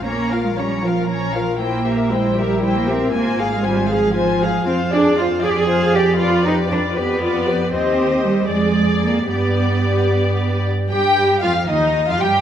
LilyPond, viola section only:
\new Staff \with { instrumentName = "Viola section" } { \time 6/8 \key f \minor \tempo 4. = 78 des'8 f'8 des'8 f'8 des'8 f'8 | e'8 g'8 e'8 g'8 e'8 g'8 | f'8 aes'8 f'8 aes'8 f'8 aes'8 | \key g \phrygian f'8 aes'8 f'8 aes'8 f'8 aes'8 |
f'8 g'8 f'8 g'8 f'8 g'8 | g'4. aes'4. | g'2~ g'8 r8 | g'4 f'8 ees'8. f'16 g'8 | }